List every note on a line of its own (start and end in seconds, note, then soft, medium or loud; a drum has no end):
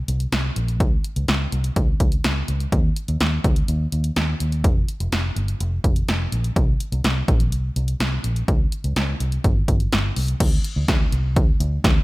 0.08 0.25 C2 medium
0.08 closed hi-hat medium
0.20 closed hi-hat medium
0.32 0.49 C2 loud
0.32 snare loud
0.32 closed hi-hat medium
0.56 0.80 A#1 medium
0.56 closed hi-hat medium
0.68 closed hi-hat soft
0.80 0.97 C#2 loud
0.80 kick loud
0.80 closed hi-hat medium
1.04 closed hi-hat medium
1.16 1.25 C#2 medium
1.16 closed hi-hat medium
1.28 1.45 C#2 medium
1.28 snare loud
1.28 closed hi-hat medium
1.52 1.69 C2 medium
1.52 closed hi-hat medium
1.64 closed hi-hat medium
1.76 1.93 C#2 loud
1.76 kick medium
1.76 closed hi-hat medium
2.00 2.17 C#2 loud
2.00 kick medium
2.00 closed hi-hat medium
2.12 closed hi-hat medium
2.24 2.41 C#2 loud
2.24 snare loud
2.24 closed hi-hat medium
2.48 2.65 C#2 medium
2.48 closed hi-hat medium
2.60 closed hi-hat soft
2.72 2.89 D#2 loud
2.72 kick loud
2.72 closed hi-hat medium
2.96 closed hi-hat medium
3.08 3.17 D#2 medium
3.08 closed hi-hat medium
3.20 3.37 D#2 medium
3.20 snare loud
3.20 closed hi-hat medium
3.44 3.61 D2 medium
3.44 kick loud
3.44 closed hi-hat medium
3.56 closed hi-hat medium
3.68 3.85 D#2 loud
3.68 closed hi-hat medium
3.92 4.09 D#2 medium
3.92 closed hi-hat medium
4.04 closed hi-hat medium
4.16 4.33 D#2 loud
4.16 snare loud
4.16 closed hi-hat medium
4.40 4.66 D#2 medium
4.40 closed hi-hat medium
4.52 closed hi-hat soft
4.64 4.81 F1 loud
4.64 kick loud
4.64 closed hi-hat medium
4.88 closed hi-hat medium
5.00 5.09 F1 medium
5.00 closed hi-hat medium
5.12 5.29 F1 medium
5.12 snare loud
5.12 closed hi-hat medium
5.36 5.53 G1 medium
5.36 closed hi-hat medium
5.48 closed hi-hat medium
5.60 5.77 F1 loud
5.60 closed hi-hat medium
5.84 6.01 F1 loud
5.84 kick medium
5.84 closed hi-hat medium
5.96 closed hi-hat medium
6.08 6.25 F1 loud
6.08 snare loud
6.08 closed hi-hat medium
6.32 6.49 A#1 medium
6.32 closed hi-hat medium
6.44 closed hi-hat soft
6.56 6.73 C2 loud
6.56 kick loud
6.56 closed hi-hat medium
6.80 closed hi-hat medium
6.92 7.01 C2 medium
6.92 closed hi-hat medium
7.04 7.21 C2 loud
7.04 snare loud
7.04 closed hi-hat medium
7.28 7.52 A#1 medium
7.28 kick loud
7.28 closed hi-hat medium
7.40 closed hi-hat medium
7.52 7.69 C2 loud
7.52 closed hi-hat medium
7.76 7.93 C2 medium
7.76 closed hi-hat medium
7.88 closed hi-hat medium
8.00 8.17 C2 loud
8.00 snare loud
8.00 closed hi-hat medium
8.24 8.41 A#1 medium
8.24 closed hi-hat medium
8.36 closed hi-hat soft
8.48 8.65 C#2 loud
8.48 kick loud
8.48 closed hi-hat medium
8.72 closed hi-hat medium
8.84 8.93 C#2 loud
8.84 closed hi-hat medium
8.96 9.13 C#2 loud
8.96 snare loud
8.96 closed hi-hat medium
9.20 9.37 C2 medium
9.20 closed hi-hat medium
9.32 closed hi-hat medium
9.44 9.61 G1 loud
9.44 kick medium
9.44 closed hi-hat medium
9.68 9.85 G1 medium
9.68 kick medium
9.68 closed hi-hat medium
9.80 closed hi-hat medium
9.92 10.09 G1 loud
9.92 snare loud
9.92 closed hi-hat medium
10.16 10.33 C2 medium
10.16 open hi-hat medium
10.28 closed hi-hat soft
10.40 10.57 D2 loud
10.40 kick loud
10.40 closed hi-hat medium
10.40 crash loud
10.64 closed hi-hat medium
10.76 10.85 D2 loud
10.88 11.05 D2 loud
10.88 kick loud
10.88 snare loud
10.88 closed hi-hat medium
11.12 11.36 C2 medium
11.12 closed hi-hat medium
11.36 11.53 D2 loud
11.36 kick loud
11.36 closed hi-hat medium
11.60 11.77 D2 loud
11.60 closed hi-hat medium
11.84 12.01 D2 loud
11.84 kick loud
11.84 snare loud
11.84 closed hi-hat medium